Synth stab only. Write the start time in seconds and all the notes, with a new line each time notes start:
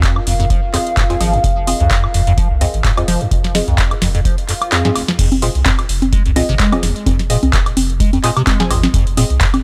0.73 C4 F4 G#4 D#5
1.10 C4 F4 G#4 G#5
1.20 C4 F4 G#4 D#5
1.67 C4 F4 G#4 D#5
2.61 C4 F4 G#4 D#5
2.97 C4 F4 G#4 D#5
3.55 C4 F4 G#4 D#5
4.72 C4 F4 G#4 D#5
4.85 C4 F4 G#4 D#5
5.42 C4 F4 G#4 D#5
6.36 C4 F4 G#4 D#5
6.72 C4 F4 G#4 D#5
7.30 C4 F4 G#4 D#5
8.24 C4 F4 G#4 D#5
8.60 C4 F4 G#4 G#5
8.70 C4 F4 G#4 D#5
9.17 C4 F4 G#4 D#5